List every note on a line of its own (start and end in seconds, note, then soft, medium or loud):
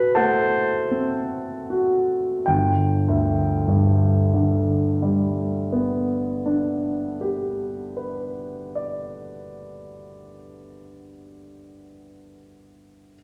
0.00 2.51 A2 soft
0.00 0.17 A3 soft
0.00 0.60 F#4 soft
0.00 0.14 B4 soft
0.00 0.16 B4 soft
0.00 0.17 B5 medium
0.14 1.38 A3 soft
0.14 2.43 A4 soft
0.14 1.29 C5 medium
0.14 2.43 F#5 soft
0.14 2.47 A5 medium
0.91 2.19 C4 soft
1.70 2.47 F#4 soft
2.46 7.09 G1 soft
2.46 7.08 G5 soft
3.08 7.70 D2 soft
3.68 8.30 G2 soft
4.33 8.95 D3 soft
5.02 9.64 G3 soft
5.72 10.34 B3 soft
6.46 11.08 D4 soft
7.21 11.83 G4 soft
7.97 12.39 B4 soft
8.75 12.39 D5 soft